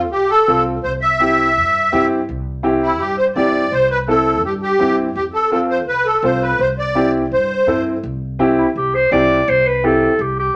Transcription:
0.00 0.11 F2 medium
0.11 0.40 C2 medium
0.11 0.30 G4 medium
0.30 0.64 A4 medium
0.47 0.77 C2 loud
0.47 0.73 C4 medium
0.47 0.73 F4 medium
0.47 0.73 A4 medium
0.84 1.59 C2 medium
0.84 0.92 C5 medium
1.02 2.06 E5 loud
1.20 1.45 C4 medium
1.20 1.45 E4 medium
1.20 1.45 G4 medium
1.57 1.85 G2 medium
1.92 2.21 G2 medium
1.92 2.17 C4 medium
1.92 2.17 E4 medium
1.92 2.17 G4 medium
2.29 3.00 C2 medium
2.63 2.89 C4 medium
2.63 2.89 E4 medium
2.63 2.89 G4 medium
2.83 3.01 E4 medium
3.00 3.29 G2 medium
3.00 3.17 G4 medium
3.18 3.26 C5 medium
3.36 3.65 G2 medium
3.36 3.61 C4 medium
3.36 3.61 E4 medium
3.36 3.61 G4 medium
3.36 3.73 D5 loud
3.72 4.44 C2 medium
3.72 3.89 C5 loud
3.91 3.99 B4 medium
4.08 4.33 C4 medium
4.08 4.33 E4 medium
4.08 4.33 A4 medium
4.08 4.42 A4 medium
4.44 4.73 G2 medium
4.44 4.53 G4 medium
4.62 4.96 G4 loud
4.79 5.08 G2 medium
4.79 5.05 C4 medium
4.79 5.05 E4 medium
4.79 5.05 G4 medium
5.15 5.87 F2 medium
5.15 5.24 G4 medium
5.34 5.50 A4 medium
5.51 5.77 C4 medium
5.51 5.77 F4 medium
5.51 5.60 A4 medium
5.51 5.77 A4 medium
5.70 5.78 C5 loud
5.87 6.16 C2 medium
5.87 6.06 B4 medium
6.06 6.22 A4 medium
6.23 6.52 C2 loud
6.23 6.49 C4 medium
6.23 6.49 F4 medium
6.23 6.49 A4 medium
6.23 6.43 C5 medium
6.42 6.60 B4 medium
6.59 7.33 C2 loud
6.59 6.68 C5 medium
6.79 7.12 D5 medium
6.95 7.21 C4 medium
6.95 7.21 E4 medium
6.95 7.21 G4 medium
7.32 7.60 G2 medium
7.32 7.83 C5 medium
7.67 7.96 G2 medium
7.67 7.93 C4 medium
7.67 7.93 E4 medium
7.67 7.93 A4 medium
8.03 8.61 C2 loud
8.39 8.65 C4 medium
8.39 8.65 E4 medium
8.39 8.65 G4 medium
8.58 8.66 E4 medium
8.76 9.04 C2 medium
8.76 8.96 G4 medium
8.95 9.12 C5 loud
9.11 9.40 C2 loud
9.11 9.36 C4 medium
9.11 9.37 E4 medium
9.11 9.37 G4 medium
9.11 9.51 D5 loud
9.48 10.05 C2 loud
9.48 9.68 C5 loud
9.67 9.87 B4 medium
9.83 10.09 C4 medium
9.83 10.09 E4 medium
9.83 10.09 G4 medium
9.83 10.23 A4 medium
10.19 10.48 C2 medium
10.19 10.38 G4 medium
10.39 10.56 G4 medium

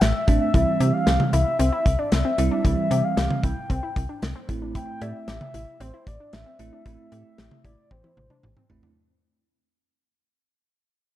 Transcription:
0.01 0.13 A1 loud
0.01 0.40 E5 loud
0.01 snare loud
0.01 closed hi-hat medium
0.28 0.39 A1 loud
0.28 0.49 A3 medium
0.28 0.49 C4 medium
0.28 0.49 D4 medium
0.28 kick medium
0.28 closed hi-hat medium
0.41 0.53 E5 medium
0.54 0.66 C2 loud
0.54 1.39 E3 medium
0.54 1.39 G3 medium
0.54 1.39 C4 medium
0.54 0.72 E4 loud
0.54 0.95 E5 loud
0.54 kick loud
0.54 closed hi-hat medium
0.80 0.92 C3 medium
0.80 0.98 G4 medium
0.80 closed hi-hat medium
0.93 1.32 F5 loud
1.07 1.18 C2 loud
1.07 1.24 G4 medium
1.07 snare loud
1.07 closed hi-hat medium
1.20 mid tom loud
1.33 1.45 C2 loud
1.33 1.51 E4 medium
1.33 1.57 E5 medium
1.33 closed hi-hat medium
1.59 1.71 C2 loud
1.59 1.68 C4 loud
1.59 closed hi-hat medium
1.72 1.90 E4 medium
1.86 1.97 C2 loud
1.86 kick loud
1.86 closed hi-hat medium
1.99 2.17 D4 medium
1.99 2.11 D5 medium
2.12 2.24 C2 loud
2.12 2.49 E5 loud
2.12 snare loud
2.12 closed hi-hat medium
2.25 2.43 C4 medium
2.38 2.50 C2 loud
2.38 2.60 G3 medium
2.38 2.60 C4 medium
2.38 2.60 E4 medium
2.38 closed hi-hat medium
2.51 2.60 D4 medium
2.51 2.64 E5 medium
2.64 2.76 C2 loud
2.64 3.50 E3 medium
2.64 3.50 G3 medium
2.64 3.50 C4 medium
2.64 2.82 E4 loud
2.64 3.05 E5 loud
2.64 kick loud
2.64 closed hi-hat medium
2.91 3.02 C3 loud
2.91 3.09 G4 medium
2.91 closed hi-hat medium
3.04 3.45 F5 loud
3.17 3.29 C2 loud
3.17 3.35 G4 medium
3.17 snare loud
3.17 closed hi-hat medium
3.30 mid tom loud
3.43 3.55 C2 loud
3.43 3.61 E4 medium
3.43 4.49 G5 loud
3.43 kick loud
3.43 closed hi-hat medium
3.70 3.81 C2 loud
3.70 3.79 C4 loud
3.70 kick loud
3.70 closed hi-hat medium
3.83 4.01 E4 medium
3.96 4.08 C2 loud
3.96 kick loud
3.96 closed hi-hat medium
4.09 4.27 D4 medium
4.22 4.34 C2 loud
4.22 snare loud
4.22 closed hi-hat medium
4.36 4.53 C4 medium
4.49 4.83 A1 loud
4.49 5.34 A3 loud
4.49 5.34 C4 medium
4.49 5.34 E4 loud
4.49 kick medium
4.49 closed hi-hat medium
4.62 4.71 D4 medium
4.75 4.93 E4 medium
4.75 5.03 G5 loud
4.75 kick loud
4.75 closed hi-hat medium
5.01 5.13 A2 loud
5.01 5.19 G4 medium
5.01 5.27 E5 loud
5.01 closed hi-hat medium
5.01 cowbell medium
5.28 5.39 A1 loud
5.28 5.46 G4 medium
5.28 5.82 E5 loud
5.28 snare loud
5.28 closed hi-hat medium
5.41 mid tom loud
5.54 5.66 A1 loud
5.54 5.72 E4 medium
5.54 closed hi-hat medium
5.80 5.92 A1 loud
5.80 5.89 C4 medium
5.80 6.09 C5 loud
5.80 closed hi-hat medium
5.94 6.11 E4 medium
6.07 6.18 A1 loud
6.07 6.35 D5 loud
6.07 kick loud
6.07 closed hi-hat medium
6.20 6.38 D4 medium
6.33 6.45 A1 loud
6.33 6.72 E5 loud
6.33 snare loud
6.33 closed hi-hat medium
6.46 6.64 C4 medium
6.59 6.71 A1 loud
6.59 6.81 A3 medium
6.59 6.81 C4 medium
6.59 6.81 E4 medium
6.59 closed hi-hat medium
6.73 6.81 D4 medium
6.73 6.85 E5 medium
6.86 6.97 A1 loud
6.86 7.71 A3 medium
6.86 7.71 C4 medium
6.86 7.03 E4 loud
6.86 7.71 E4 medium
6.86 kick loud
6.86 closed hi-hat medium
7.12 7.24 A2 loud
7.12 7.30 G4 medium
7.12 closed hi-hat medium
7.38 7.50 A1 loud
7.38 7.56 G4 medium
7.38 snare loud
7.38 closed hi-hat medium
7.51 mid tom loud
7.65 7.76 A1 loud
7.65 7.82 E4 medium
7.65 7.93 D5 medium
7.65 kick loud
7.65 closed hi-hat medium
7.65 cowbell medium
7.91 8.02 A1 loud
7.91 8.00 C4 medium
7.91 8.70 C5 medium
7.91 kick medium
7.91 high tom medium
8.04 8.22 E4 medium
8.04 high tom medium
8.17 8.29 A1 loud
8.17 mid tom medium
8.30 8.48 D4 medium
8.30 mid tom medium
8.43 8.55 A1 loud
8.43 mid tom medium
8.57 8.75 C4 medium
8.57 mid tom medium
8.70 8.81 A1 medium
8.70 8.91 A3 medium
8.70 8.91 C4 medium
8.70 8.91 E4 loud
8.70 floor tom loud
8.83 8.92 D4 medium
8.83 floor tom loud

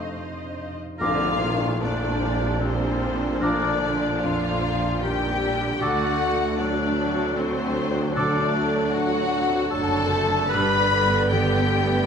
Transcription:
0.00 0.76 F2 soft
0.00 0.97 F2 soft
0.00 1.03 C3 soft
0.00 0.58 A3 soft
0.00 0.15 D4 soft
0.00 0.16 D#4 soft
0.00 1.03 F4 soft
0.00 0.77 C5 soft
0.00 0.76 D#5 soft
0.00 0.77 F5 soft
0.16 0.62 D#4 soft
0.45 0.74 D4 soft
0.75 1.02 D#4 soft
0.99 3.39 A#1 medium
0.99 5.77 A#1 medium
0.99 5.76 A#2 medium
0.99 1.38 D3 medium
0.99 1.78 A#3 medium
0.99 5.77 D4 medium
0.99 1.77 F4 medium
0.99 1.78 F4 medium
0.99 1.29 A#4 medium
0.99 5.76 D5 medium
0.99 1.78 F5 loud
0.99 1.38 D6 medium
0.99 tam-tam medium
1.28 1.71 F4 medium
1.40 1.81 D#3 medium
1.55 1.99 D4 soft
1.80 2.25 F2 soft
1.80 2.61 F3 medium
1.80 2.22 A3 medium
1.80 2.61 D4 medium
1.80 2.63 D4 medium
1.80 2.64 D5 medium
2.10 2.53 D4 soft
2.22 3.40 G3 medium
2.36 2.63 C4 soft
2.61 3.41 F3 medium
2.61 3.40 C4 medium
2.61 3.42 C4 medium
2.61 3.05 D4 soft
2.61 3.43 C5 medium
2.88 3.15 C4 soft
3.15 3.58 D4 soft
3.41 5.76 A#1 medium
3.41 4.22 D3 medium
3.41 3.80 F3 medium
3.41 4.20 D4 medium
3.41 4.21 D4 medium
3.41 3.71 A#4 medium
3.41 4.23 D5 medium
3.41 3.80 D6 medium
3.68 4.12 F4 soft
3.82 4.61 F3 medium
3.96 4.39 D4 soft
4.22 4.66 F2 soft
4.22 4.62 D3 medium
4.22 5.03 F4 medium
4.22 5.02 F4 medium
4.22 5.02 F5 medium
4.51 4.92 D4 soft
4.63 5.02 F3 medium
4.77 5.02 C4 soft
5.01 5.41 D#3 medium
5.01 5.80 G3 medium
5.01 5.44 D4 soft
5.01 5.80 G4 medium
5.01 5.81 G4 medium
5.01 5.79 G5 medium
5.28 5.54 C4 soft
5.41 5.79 D3 medium
5.55 5.81 D4 soft
5.79 8.11 D2 medium
5.79 9.72 D2 medium
5.79 6.57 D3 medium
5.79 6.56 A3 medium
5.79 10.34 D4 medium
5.79 6.60 F#4 medium
5.79 6.59 F#4 medium
5.79 10.34 A4 medium
5.79 6.09 A4 medium
5.79 6.59 F#5 loud
5.79 6.17 D6 medium
6.07 6.48 D4 soft
6.33 6.74 A3 medium
6.58 7.00 A2 medium
6.58 6.96 F#3 medium
6.58 8.12 A3 medium
6.58 7.37 D4 medium
6.58 7.38 D4 medium
6.58 7.37 D5 medium
6.86 7.27 D4 soft
6.97 7.36 F#3 medium
7.12 7.37 C4 soft
7.36 8.14 F#3 medium
7.36 7.88 C4 medium
7.36 8.14 C4 medium
7.36 7.80 D4 medium
7.36 8.16 C5 medium
7.65 7.90 C4 soft
7.91 8.32 D4 medium
8.14 10.49 D2 medium
8.14 9.68 F#3 medium
8.14 8.94 D4 medium
8.14 8.92 D4 medium
8.14 8.44 A4 medium
8.14 8.92 D5 loud
8.14 8.52 D6 medium
8.43 8.83 A3 medium
8.68 9.09 D4 medium
8.91 9.35 A2 medium
8.91 9.71 F#4 medium
8.91 9.72 F#4 medium
8.91 9.72 F#5 loud
9.20 9.61 D4 medium
9.47 9.73 C4 medium
9.71 10.52 F#1 medium
9.71 10.52 F#2 medium
9.71 10.50 D3 medium
9.71 10.11 F#3 medium
9.71 10.15 D4 medium
9.71 10.51 A4 loud
9.71 10.54 A4 medium
9.71 10.50 A5 loud
10.00 10.26 C4 medium
10.11 10.51 A3 medium
10.27 10.53 D4 medium
10.50 12.06 G1 medium
10.50 12.06 G2 medium
10.50 12.04 D3 medium
10.50 10.90 G3 medium
10.50 12.06 G3 medium
10.50 10.79 B4 medium
10.50 12.06 B4 medium
10.50 11.30 B4 medium
10.50 11.31 B4 loud
10.50 11.30 B5 loud
10.50 10.88 B5 medium
10.80 11.21 D4 medium
10.91 11.30 G3 medium
11.07 11.47 B3 medium
11.29 11.73 D3 medium
11.29 11.68 B3 medium
11.29 12.06 G4 medium
11.29 12.06 G5 loud
11.59 11.99 B3 soft
11.69 12.06 B3 medium
11.84 12.06 A3 soft

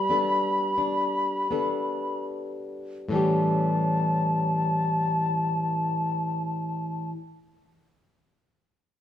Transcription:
0.00 3.10 G3 medium
0.00 2.25 B5 medium
0.10 1.49 B3 soft
0.10 0.77 D4 soft
0.10 1.52 A4 soft
0.78 1.50 D4 soft
1.51 3.12 B3 soft
1.51 3.14 D4 soft
1.51 3.15 A4 soft
3.09 7.10 A2 soft
3.09 7.12 E3 medium
3.09 7.14 G3 medium
3.09 7.09 A5 medium
3.14 7.16 C#4 medium
3.14 7.17 G4 soft

